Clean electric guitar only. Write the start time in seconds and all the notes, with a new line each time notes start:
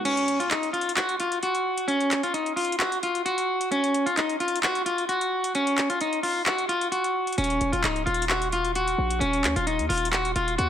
0.05 C#4
0.40 F4
0.51 D#4
0.73 F4
0.96 F#4
1.20 F4
1.43 F#4
1.88 C#4
2.23 F4
2.34 D#4
2.56 F4
2.79 F#4
3.03 F4
3.26 F#4
3.72 C#4
4.06 F4
4.17 D#4
4.40 F4
4.63 F#4
4.86 F4
5.09 F#4
5.55 C#4
5.90 F4
6.01 D#4
6.23 F4
6.46 F#4
6.69 F4
6.92 F#4
7.38 C#4
7.72 F4
7.84 D#4
8.06 F4
8.29 F#4
8.53 F4
8.76 F#4
9.20 C#4
9.56 F4
9.67 D#4
9.89 F4
10.12 F#4
10.36 F4
10.58 F#4